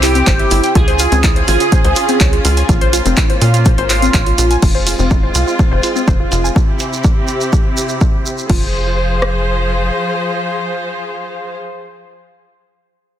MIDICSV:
0, 0, Header, 1, 7, 480
1, 0, Start_track
1, 0, Key_signature, -4, "minor"
1, 0, Tempo, 483871
1, 748, Time_signature, 4, 2, 24, 8
1, 13087, End_track
2, 0, Start_track
2, 0, Title_t, "Analog polysynth"
2, 0, Program_c, 0, 90
2, 28, Note_on_c, 0, 67, 101
2, 654, Note_off_c, 0, 67, 0
2, 748, Note_on_c, 0, 68, 113
2, 1374, Note_off_c, 0, 68, 0
2, 1468, Note_on_c, 0, 68, 107
2, 2334, Note_off_c, 0, 68, 0
2, 3868, Note_on_c, 0, 65, 100
2, 4494, Note_off_c, 0, 65, 0
2, 13087, End_track
3, 0, Start_track
3, 0, Title_t, "Synth arpeggio sound"
3, 0, Program_c, 1, 84
3, 28, Note_on_c, 1, 64, 102
3, 81, Note_off_c, 1, 64, 0
3, 150, Note_on_c, 1, 60, 79
3, 201, Note_off_c, 1, 60, 0
3, 268, Note_on_c, 1, 72, 106
3, 357, Note_off_c, 1, 72, 0
3, 391, Note_on_c, 1, 64, 77
3, 442, Note_off_c, 1, 64, 0
3, 508, Note_on_c, 1, 64, 101
3, 597, Note_off_c, 1, 64, 0
3, 630, Note_on_c, 1, 79, 77
3, 715, Note_off_c, 1, 79, 0
3, 748, Note_on_c, 1, 65, 85
3, 865, Note_off_c, 1, 65, 0
3, 871, Note_on_c, 1, 72, 101
3, 955, Note_off_c, 1, 72, 0
3, 988, Note_on_c, 1, 65, 105
3, 1041, Note_off_c, 1, 65, 0
3, 1111, Note_on_c, 1, 60, 78
3, 1162, Note_off_c, 1, 60, 0
3, 1228, Note_on_c, 1, 64, 86
3, 1344, Note_off_c, 1, 64, 0
3, 1350, Note_on_c, 1, 72, 81
3, 1462, Note_off_c, 1, 72, 0
3, 1467, Note_on_c, 1, 65, 105
3, 1556, Note_off_c, 1, 65, 0
3, 1591, Note_on_c, 1, 65, 81
3, 1642, Note_off_c, 1, 65, 0
3, 1708, Note_on_c, 1, 72, 86
3, 1797, Note_off_c, 1, 72, 0
3, 1831, Note_on_c, 1, 72, 102
3, 1915, Note_off_c, 1, 72, 0
3, 1948, Note_on_c, 1, 65, 104
3, 2001, Note_off_c, 1, 65, 0
3, 2071, Note_on_c, 1, 60, 81
3, 2121, Note_off_c, 1, 60, 0
3, 2188, Note_on_c, 1, 73, 102
3, 2277, Note_off_c, 1, 73, 0
3, 2311, Note_on_c, 1, 65, 80
3, 2361, Note_off_c, 1, 65, 0
3, 2428, Note_on_c, 1, 65, 103
3, 2517, Note_off_c, 1, 65, 0
3, 2551, Note_on_c, 1, 80, 75
3, 2635, Note_off_c, 1, 80, 0
3, 2668, Note_on_c, 1, 65, 88
3, 2785, Note_off_c, 1, 65, 0
3, 2791, Note_on_c, 1, 72, 101
3, 2875, Note_off_c, 1, 72, 0
3, 2908, Note_on_c, 1, 65, 102
3, 2961, Note_off_c, 1, 65, 0
3, 3031, Note_on_c, 1, 60, 76
3, 3081, Note_off_c, 1, 60, 0
3, 3147, Note_on_c, 1, 64, 85
3, 3264, Note_off_c, 1, 64, 0
3, 3271, Note_on_c, 1, 72, 82
3, 3382, Note_off_c, 1, 72, 0
3, 3388, Note_on_c, 1, 65, 104
3, 3477, Note_off_c, 1, 65, 0
3, 3510, Note_on_c, 1, 65, 78
3, 3561, Note_off_c, 1, 65, 0
3, 3627, Note_on_c, 1, 72, 81
3, 3717, Note_off_c, 1, 72, 0
3, 3750, Note_on_c, 1, 72, 103
3, 3835, Note_off_c, 1, 72, 0
3, 3868, Note_on_c, 1, 65, 102
3, 3921, Note_off_c, 1, 65, 0
3, 3991, Note_on_c, 1, 60, 75
3, 4041, Note_off_c, 1, 60, 0
3, 4107, Note_on_c, 1, 73, 104
3, 4197, Note_off_c, 1, 73, 0
3, 4230, Note_on_c, 1, 65, 78
3, 4281, Note_off_c, 1, 65, 0
3, 4348, Note_on_c, 1, 65, 103
3, 4437, Note_off_c, 1, 65, 0
3, 4471, Note_on_c, 1, 80, 77
3, 4555, Note_off_c, 1, 80, 0
3, 4588, Note_on_c, 1, 65, 82
3, 4704, Note_off_c, 1, 65, 0
3, 4710, Note_on_c, 1, 72, 103
3, 4795, Note_off_c, 1, 72, 0
3, 4827, Note_on_c, 1, 65, 101
3, 4881, Note_off_c, 1, 65, 0
3, 4950, Note_on_c, 1, 60, 77
3, 5001, Note_off_c, 1, 60, 0
3, 5067, Note_on_c, 1, 64, 83
3, 5184, Note_off_c, 1, 64, 0
3, 5190, Note_on_c, 1, 72, 76
3, 5302, Note_off_c, 1, 72, 0
3, 5307, Note_on_c, 1, 65, 101
3, 5396, Note_off_c, 1, 65, 0
3, 5430, Note_on_c, 1, 65, 77
3, 5481, Note_off_c, 1, 65, 0
3, 5547, Note_on_c, 1, 72, 80
3, 5636, Note_off_c, 1, 72, 0
3, 5670, Note_on_c, 1, 72, 99
3, 5755, Note_off_c, 1, 72, 0
3, 5787, Note_on_c, 1, 65, 98
3, 5841, Note_off_c, 1, 65, 0
3, 5910, Note_on_c, 1, 60, 77
3, 5961, Note_off_c, 1, 60, 0
3, 6027, Note_on_c, 1, 72, 104
3, 6116, Note_off_c, 1, 72, 0
3, 6150, Note_on_c, 1, 65, 77
3, 6201, Note_off_c, 1, 65, 0
3, 6267, Note_on_c, 1, 65, 101
3, 6356, Note_off_c, 1, 65, 0
3, 6390, Note_on_c, 1, 80, 77
3, 6475, Note_off_c, 1, 80, 0
3, 8428, Note_on_c, 1, 65, 91
3, 8651, Note_off_c, 1, 65, 0
3, 13087, End_track
4, 0, Start_track
4, 0, Title_t, "String section"
4, 0, Program_c, 2, 48
4, 0, Note_on_c, 2, 48, 80
4, 0, Note_on_c, 2, 60, 71
4, 0, Note_on_c, 2, 64, 74
4, 0, Note_on_c, 2, 67, 87
4, 729, Note_off_c, 2, 48, 0
4, 729, Note_off_c, 2, 60, 0
4, 729, Note_off_c, 2, 64, 0
4, 729, Note_off_c, 2, 67, 0
4, 749, Note_on_c, 2, 49, 80
4, 749, Note_on_c, 2, 61, 72
4, 749, Note_on_c, 2, 65, 72
4, 749, Note_on_c, 2, 68, 90
4, 2649, Note_off_c, 2, 49, 0
4, 2649, Note_off_c, 2, 61, 0
4, 2649, Note_off_c, 2, 68, 0
4, 2669, Note_on_c, 2, 58, 77
4, 2669, Note_on_c, 2, 61, 73
4, 4550, Note_off_c, 2, 65, 0
4, 4569, Note_off_c, 2, 58, 0
4, 4569, Note_off_c, 2, 61, 0
4, 4588, Note_on_c, 2, 56, 75
4, 4588, Note_on_c, 2, 60, 69
4, 4588, Note_on_c, 2, 65, 84
4, 6489, Note_off_c, 2, 56, 0
4, 6489, Note_off_c, 2, 60, 0
4, 6489, Note_off_c, 2, 65, 0
4, 6508, Note_on_c, 2, 48, 74
4, 6508, Note_on_c, 2, 60, 68
4, 6508, Note_on_c, 2, 64, 68
4, 6508, Note_on_c, 2, 67, 84
4, 8408, Note_off_c, 2, 48, 0
4, 8408, Note_off_c, 2, 60, 0
4, 8408, Note_off_c, 2, 64, 0
4, 8409, Note_off_c, 2, 67, 0
4, 8429, Note_on_c, 2, 53, 72
4, 8429, Note_on_c, 2, 65, 66
4, 8429, Note_on_c, 2, 68, 65
4, 8429, Note_on_c, 2, 72, 80
4, 11454, Note_off_c, 2, 53, 0
4, 11454, Note_off_c, 2, 65, 0
4, 11454, Note_off_c, 2, 68, 0
4, 11454, Note_off_c, 2, 72, 0
4, 13087, End_track
5, 0, Start_track
5, 0, Title_t, "Analog synth bass"
5, 0, Program_c, 3, 38
5, 0, Note_on_c, 3, 36, 104
5, 225, Note_off_c, 3, 36, 0
5, 268, Note_on_c, 3, 31, 93
5, 454, Note_off_c, 3, 31, 0
5, 508, Note_on_c, 3, 31, 90
5, 603, Note_off_c, 3, 31, 0
5, 748, Note_on_c, 3, 37, 101
5, 1066, Note_off_c, 3, 37, 0
5, 1111, Note_on_c, 3, 37, 100
5, 1425, Note_off_c, 3, 37, 0
5, 1468, Note_on_c, 3, 32, 87
5, 1562, Note_off_c, 3, 32, 0
5, 1831, Note_on_c, 3, 37, 100
5, 1921, Note_off_c, 3, 37, 0
5, 2188, Note_on_c, 3, 37, 103
5, 2374, Note_off_c, 3, 37, 0
5, 2428, Note_on_c, 3, 37, 101
5, 2614, Note_off_c, 3, 37, 0
5, 2668, Note_on_c, 3, 34, 102
5, 2986, Note_off_c, 3, 34, 0
5, 3030, Note_on_c, 3, 29, 86
5, 3121, Note_off_c, 3, 29, 0
5, 3388, Note_on_c, 3, 46, 92
5, 3706, Note_off_c, 3, 46, 0
5, 3750, Note_on_c, 3, 32, 87
5, 4065, Note_off_c, 3, 32, 0
5, 4108, Note_on_c, 3, 34, 96
5, 4294, Note_off_c, 3, 34, 0
5, 4348, Note_on_c, 3, 34, 86
5, 4534, Note_off_c, 3, 34, 0
5, 4588, Note_on_c, 3, 29, 100
5, 4906, Note_off_c, 3, 29, 0
5, 4951, Note_on_c, 3, 29, 98
5, 5265, Note_off_c, 3, 29, 0
5, 5308, Note_on_c, 3, 36, 87
5, 5403, Note_off_c, 3, 36, 0
5, 5671, Note_on_c, 3, 29, 99
5, 5761, Note_off_c, 3, 29, 0
5, 6028, Note_on_c, 3, 29, 100
5, 6214, Note_off_c, 3, 29, 0
5, 6268, Note_on_c, 3, 29, 97
5, 6454, Note_off_c, 3, 29, 0
5, 8428, Note_on_c, 3, 29, 96
5, 9828, Note_off_c, 3, 29, 0
5, 13087, End_track
6, 0, Start_track
6, 0, Title_t, "Shekere"
6, 34, Note_on_c, 9, 82, 98
6, 133, Note_off_c, 9, 82, 0
6, 144, Note_on_c, 9, 82, 53
6, 243, Note_off_c, 9, 82, 0
6, 270, Note_on_c, 9, 82, 42
6, 369, Note_off_c, 9, 82, 0
6, 502, Note_on_c, 9, 82, 84
6, 601, Note_off_c, 9, 82, 0
6, 628, Note_on_c, 9, 82, 55
6, 727, Note_off_c, 9, 82, 0
6, 751, Note_on_c, 9, 82, 38
6, 850, Note_off_c, 9, 82, 0
6, 984, Note_on_c, 9, 82, 98
6, 1084, Note_off_c, 9, 82, 0
6, 1113, Note_on_c, 9, 82, 53
6, 1212, Note_off_c, 9, 82, 0
6, 1228, Note_on_c, 9, 82, 39
6, 1328, Note_off_c, 9, 82, 0
6, 1466, Note_on_c, 9, 82, 85
6, 1565, Note_off_c, 9, 82, 0
6, 1592, Note_on_c, 9, 82, 52
6, 1692, Note_off_c, 9, 82, 0
6, 1709, Note_on_c, 9, 82, 38
6, 1808, Note_off_c, 9, 82, 0
6, 1940, Note_on_c, 9, 82, 90
6, 2039, Note_off_c, 9, 82, 0
6, 2068, Note_on_c, 9, 82, 56
6, 2168, Note_off_c, 9, 82, 0
6, 2430, Note_on_c, 9, 82, 96
6, 2530, Note_off_c, 9, 82, 0
6, 2548, Note_on_c, 9, 82, 51
6, 2647, Note_off_c, 9, 82, 0
6, 2672, Note_on_c, 9, 82, 38
6, 2771, Note_off_c, 9, 82, 0
6, 2913, Note_on_c, 9, 82, 97
6, 3012, Note_off_c, 9, 82, 0
6, 3033, Note_on_c, 9, 82, 49
6, 3132, Note_off_c, 9, 82, 0
6, 3141, Note_on_c, 9, 82, 41
6, 3240, Note_off_c, 9, 82, 0
6, 3387, Note_on_c, 9, 82, 90
6, 3486, Note_off_c, 9, 82, 0
6, 3513, Note_on_c, 9, 82, 49
6, 3613, Note_off_c, 9, 82, 0
6, 3621, Note_on_c, 9, 82, 40
6, 3721, Note_off_c, 9, 82, 0
6, 3866, Note_on_c, 9, 82, 87
6, 3965, Note_off_c, 9, 82, 0
6, 4001, Note_on_c, 9, 82, 49
6, 4100, Note_off_c, 9, 82, 0
6, 4115, Note_on_c, 9, 82, 39
6, 4214, Note_off_c, 9, 82, 0
6, 4353, Note_on_c, 9, 82, 102
6, 4452, Note_off_c, 9, 82, 0
6, 4471, Note_on_c, 9, 82, 50
6, 4570, Note_off_c, 9, 82, 0
6, 4592, Note_on_c, 9, 82, 41
6, 4691, Note_off_c, 9, 82, 0
6, 4829, Note_on_c, 9, 82, 85
6, 4928, Note_off_c, 9, 82, 0
6, 4948, Note_on_c, 9, 82, 50
6, 5048, Note_off_c, 9, 82, 0
6, 5064, Note_on_c, 9, 82, 40
6, 5163, Note_off_c, 9, 82, 0
6, 5308, Note_on_c, 9, 82, 98
6, 5407, Note_off_c, 9, 82, 0
6, 5429, Note_on_c, 9, 82, 56
6, 5528, Note_off_c, 9, 82, 0
6, 5548, Note_on_c, 9, 82, 39
6, 5647, Note_off_c, 9, 82, 0
6, 5786, Note_on_c, 9, 82, 97
6, 5886, Note_off_c, 9, 82, 0
6, 5912, Note_on_c, 9, 82, 52
6, 6011, Note_off_c, 9, 82, 0
6, 6029, Note_on_c, 9, 82, 42
6, 6128, Note_off_c, 9, 82, 0
6, 6268, Note_on_c, 9, 82, 84
6, 6368, Note_off_c, 9, 82, 0
6, 6395, Note_on_c, 9, 82, 53
6, 6494, Note_off_c, 9, 82, 0
6, 6514, Note_on_c, 9, 82, 37
6, 6613, Note_off_c, 9, 82, 0
6, 6739, Note_on_c, 9, 82, 98
6, 6838, Note_off_c, 9, 82, 0
6, 6874, Note_on_c, 9, 82, 58
6, 6973, Note_off_c, 9, 82, 0
6, 6981, Note_on_c, 9, 82, 41
6, 7080, Note_off_c, 9, 82, 0
6, 7219, Note_on_c, 9, 82, 91
6, 7318, Note_off_c, 9, 82, 0
6, 7347, Note_on_c, 9, 82, 51
6, 7446, Note_off_c, 9, 82, 0
6, 7464, Note_on_c, 9, 82, 43
6, 7563, Note_off_c, 9, 82, 0
6, 7710, Note_on_c, 9, 82, 93
6, 7809, Note_off_c, 9, 82, 0
6, 7825, Note_on_c, 9, 82, 55
6, 7924, Note_off_c, 9, 82, 0
6, 7945, Note_on_c, 9, 82, 38
6, 8044, Note_off_c, 9, 82, 0
6, 8193, Note_on_c, 9, 82, 98
6, 8293, Note_off_c, 9, 82, 0
6, 8312, Note_on_c, 9, 82, 55
6, 8411, Note_off_c, 9, 82, 0
6, 13087, End_track
7, 0, Start_track
7, 0, Title_t, "Drums"
7, 28, Note_on_c, 9, 39, 59
7, 28, Note_on_c, 9, 46, 104
7, 127, Note_off_c, 9, 39, 0
7, 127, Note_off_c, 9, 46, 0
7, 151, Note_on_c, 9, 42, 46
7, 250, Note_off_c, 9, 42, 0
7, 268, Note_on_c, 9, 36, 117
7, 268, Note_on_c, 9, 39, 116
7, 268, Note_on_c, 9, 42, 68
7, 367, Note_off_c, 9, 39, 0
7, 367, Note_off_c, 9, 42, 0
7, 368, Note_off_c, 9, 36, 0
7, 391, Note_on_c, 9, 42, 45
7, 490, Note_off_c, 9, 42, 0
7, 508, Note_on_c, 9, 46, 92
7, 607, Note_off_c, 9, 46, 0
7, 631, Note_on_c, 9, 42, 44
7, 730, Note_off_c, 9, 42, 0
7, 748, Note_on_c, 9, 36, 117
7, 748, Note_on_c, 9, 42, 70
7, 847, Note_off_c, 9, 42, 0
7, 848, Note_off_c, 9, 36, 0
7, 871, Note_on_c, 9, 42, 47
7, 970, Note_off_c, 9, 42, 0
7, 988, Note_on_c, 9, 46, 102
7, 1087, Note_off_c, 9, 46, 0
7, 1111, Note_on_c, 9, 42, 47
7, 1210, Note_off_c, 9, 42, 0
7, 1228, Note_on_c, 9, 36, 117
7, 1228, Note_on_c, 9, 39, 115
7, 1228, Note_on_c, 9, 42, 67
7, 1327, Note_off_c, 9, 39, 0
7, 1327, Note_off_c, 9, 42, 0
7, 1328, Note_off_c, 9, 36, 0
7, 1351, Note_on_c, 9, 42, 49
7, 1450, Note_off_c, 9, 42, 0
7, 1468, Note_on_c, 9, 46, 89
7, 1567, Note_off_c, 9, 46, 0
7, 1591, Note_on_c, 9, 42, 46
7, 1690, Note_off_c, 9, 42, 0
7, 1708, Note_on_c, 9, 36, 116
7, 1708, Note_on_c, 9, 42, 71
7, 1807, Note_off_c, 9, 42, 0
7, 1808, Note_off_c, 9, 36, 0
7, 1830, Note_on_c, 9, 42, 47
7, 1930, Note_off_c, 9, 42, 0
7, 1947, Note_on_c, 9, 46, 100
7, 2047, Note_off_c, 9, 46, 0
7, 2071, Note_on_c, 9, 42, 47
7, 2170, Note_off_c, 9, 42, 0
7, 2188, Note_on_c, 9, 36, 118
7, 2188, Note_on_c, 9, 39, 116
7, 2188, Note_on_c, 9, 42, 71
7, 2287, Note_off_c, 9, 39, 0
7, 2287, Note_off_c, 9, 42, 0
7, 2288, Note_off_c, 9, 36, 0
7, 2311, Note_on_c, 9, 42, 48
7, 2410, Note_off_c, 9, 42, 0
7, 2428, Note_on_c, 9, 46, 92
7, 2527, Note_off_c, 9, 46, 0
7, 2551, Note_on_c, 9, 42, 47
7, 2650, Note_off_c, 9, 42, 0
7, 2668, Note_on_c, 9, 36, 119
7, 2668, Note_on_c, 9, 42, 72
7, 2768, Note_off_c, 9, 36, 0
7, 2768, Note_off_c, 9, 42, 0
7, 2792, Note_on_c, 9, 42, 49
7, 2891, Note_off_c, 9, 42, 0
7, 2908, Note_on_c, 9, 46, 106
7, 3007, Note_off_c, 9, 46, 0
7, 3031, Note_on_c, 9, 42, 48
7, 3131, Note_off_c, 9, 42, 0
7, 3148, Note_on_c, 9, 36, 122
7, 3148, Note_on_c, 9, 39, 118
7, 3148, Note_on_c, 9, 42, 69
7, 3247, Note_off_c, 9, 39, 0
7, 3247, Note_off_c, 9, 42, 0
7, 3248, Note_off_c, 9, 36, 0
7, 3271, Note_on_c, 9, 42, 47
7, 3370, Note_off_c, 9, 42, 0
7, 3388, Note_on_c, 9, 46, 90
7, 3487, Note_off_c, 9, 46, 0
7, 3511, Note_on_c, 9, 42, 47
7, 3611, Note_off_c, 9, 42, 0
7, 3628, Note_on_c, 9, 36, 117
7, 3628, Note_on_c, 9, 42, 73
7, 3727, Note_off_c, 9, 36, 0
7, 3727, Note_off_c, 9, 42, 0
7, 3751, Note_on_c, 9, 42, 48
7, 3850, Note_off_c, 9, 42, 0
7, 3868, Note_on_c, 9, 39, 63
7, 3868, Note_on_c, 9, 46, 106
7, 3967, Note_off_c, 9, 39, 0
7, 3967, Note_off_c, 9, 46, 0
7, 3991, Note_on_c, 9, 42, 48
7, 4090, Note_off_c, 9, 42, 0
7, 4108, Note_on_c, 9, 36, 116
7, 4108, Note_on_c, 9, 39, 118
7, 4108, Note_on_c, 9, 42, 70
7, 4207, Note_off_c, 9, 36, 0
7, 4207, Note_off_c, 9, 39, 0
7, 4207, Note_off_c, 9, 42, 0
7, 4231, Note_on_c, 9, 42, 47
7, 4330, Note_off_c, 9, 42, 0
7, 4347, Note_on_c, 9, 46, 91
7, 4446, Note_off_c, 9, 46, 0
7, 4470, Note_on_c, 9, 42, 48
7, 4569, Note_off_c, 9, 42, 0
7, 4587, Note_on_c, 9, 49, 93
7, 4588, Note_on_c, 9, 36, 119
7, 4686, Note_off_c, 9, 49, 0
7, 4687, Note_off_c, 9, 36, 0
7, 4827, Note_on_c, 9, 46, 105
7, 4926, Note_off_c, 9, 46, 0
7, 5068, Note_on_c, 9, 36, 123
7, 5167, Note_off_c, 9, 36, 0
7, 5307, Note_on_c, 9, 46, 87
7, 5406, Note_off_c, 9, 46, 0
7, 5548, Note_on_c, 9, 36, 116
7, 5647, Note_off_c, 9, 36, 0
7, 5787, Note_on_c, 9, 46, 101
7, 5886, Note_off_c, 9, 46, 0
7, 6028, Note_on_c, 9, 36, 117
7, 6127, Note_off_c, 9, 36, 0
7, 6267, Note_on_c, 9, 46, 91
7, 6366, Note_off_c, 9, 46, 0
7, 6508, Note_on_c, 9, 36, 118
7, 6607, Note_off_c, 9, 36, 0
7, 6747, Note_on_c, 9, 46, 109
7, 6846, Note_off_c, 9, 46, 0
7, 6988, Note_on_c, 9, 36, 124
7, 7087, Note_off_c, 9, 36, 0
7, 7227, Note_on_c, 9, 46, 92
7, 7326, Note_off_c, 9, 46, 0
7, 7468, Note_on_c, 9, 36, 120
7, 7567, Note_off_c, 9, 36, 0
7, 7707, Note_on_c, 9, 46, 103
7, 7806, Note_off_c, 9, 46, 0
7, 7948, Note_on_c, 9, 36, 118
7, 8047, Note_off_c, 9, 36, 0
7, 8187, Note_on_c, 9, 46, 93
7, 8286, Note_off_c, 9, 46, 0
7, 8427, Note_on_c, 9, 49, 81
7, 8428, Note_on_c, 9, 36, 106
7, 8527, Note_off_c, 9, 36, 0
7, 8527, Note_off_c, 9, 49, 0
7, 9148, Note_on_c, 9, 37, 59
7, 9247, Note_off_c, 9, 37, 0
7, 13087, End_track
0, 0, End_of_file